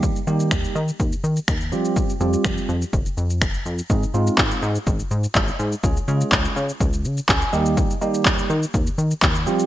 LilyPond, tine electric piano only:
\new Staff \with { instrumentName = "Tine electric piano" } { \time 4/4 \key ees \mixolydian \tempo 4 = 124 << { r1 | r1 | r1 | r2. aes''8 ees''8 |
r1 | } \\ { <g bes ees' g'>8 <g bes ees' g'>4 r2 <g c' f' g'>8~ | <g c' f' g'>8 <g c' f' g'>4 r2 r8 | <aes c' ees' aes'>16 r16 <aes c' ees' f'>4 r2 r8 | <aes des' f' aes'>16 r16 <aes des' f' aes'>4 r2 <g bes ees' g'>8~ |
<g bes ees' g'>8 <g bes ees' g'>4 r2 <g c' f' g'>8 | } >> }